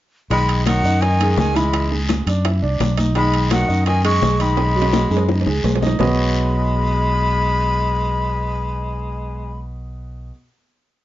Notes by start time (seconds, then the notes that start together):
0.30 B1 D#3 G#3 D#4 B5, high bongo, high conga, high timbale, long guiro
0.49 high conga, high timbale
0.66 D#3 F#3 F#4 F#5, high bongo, high conga, high timbale, short guiro
0.84 F#2 D#4 D#5, short guiro
1.01 D#3 G#5, high bongo, high conga, high timbale, long guiro
1.20 G#3 G#4, high conga, high timbale
1.37 C#2 D#3 G#5, high bongo, low bongo, high conga, short guiro
1.56 E3 G#3 E4 B5, high conga, high timbale, short guiro
1.73 high bongo, high conga, high timbale, long guiro
1.92 G#3 G#4, high conga
2.09 high bongo, high conga, high timbale, short guiro
2.26 F#2 D4 D5, high bongo, high conga, high timbale, short guiro
2.44 E4 E5, high bongo, high conga, high timbale, long guiro
2.62 C2 D4 D5, high bongo, high conga
2.80 B1, high bongo, low bongo, high conga, high timbale, short guiro
2.97 D#4 D#5, high bongo, high conga, high timbale, short guiro
3.15 D#3 G#3 D#4 B5, high bongo, high conga, high timbale, long guiro
3.34 high conga, high timbale
3.51 D#3 F#3 F#4 F#5, high bongo, high conga, high timbale, short guiro
3.68 F#2 D#4 D#5, short guiro
3.86 D#3 G#5, high bongo, high conga, high timbale, long guiro
4.04 G#3 G#4 C#6, high conga, high timbale
4.22 B1, high bongo, low bongo, high conga, short guiro
4.39 D#3 G#3 D#4 B5, high conga, high timbale, short guiro
4.57 high bongo, high conga, high timbale, long guiro
4.76 F#3 F#4, high conga
4.82 high timbale
4.93 high bongo, high conga, high timbale, short guiro
5.10 F#2 G#3 G#4, high bongo, high conga, short guiro
5.17 low timbale
5.29 D#4 D#5, high bongo, high conga, long guiro
5.41 low timbale
5.46 C#2 G#3 G#4, low bongo, high conga
5.64 B1, high conga, low timbale, short guiro
5.76 low timbale
5.82 D#4 D#5, low bongo, high conga, short guiro
5.87 low timbale
5.99 B1 G#3 B3 F#4 G#4 B4 C#5 D#5 B5, low bongo, low conga, low timbale, long guiro